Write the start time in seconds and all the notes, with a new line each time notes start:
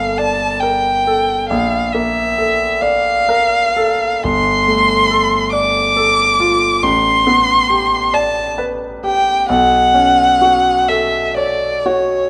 Already playing: G1 A#3 A4 F5
0.18 D5 A5
0.61 A#4 G5
1.07 A4
1.49 A#1 F5
1.92 A#3 E5
2.38 A4
2.82 D5 F5
3.29 A#4
3.76 A4
4.23 G1 C6
4.68 A3
5.10 A4
5.53 D5 D6
5.96 A4
6.40 F4
6.83 A1 C6
7.27 B3
7.70 G4
8.14 D5 A5
8.58 B4
9.04 G4 G5
9.49 B1 F#5
9.94 C#4
10.42 F#4
10.88 A4 E5
11.37 C#5 D5
11.86 F#4 C#5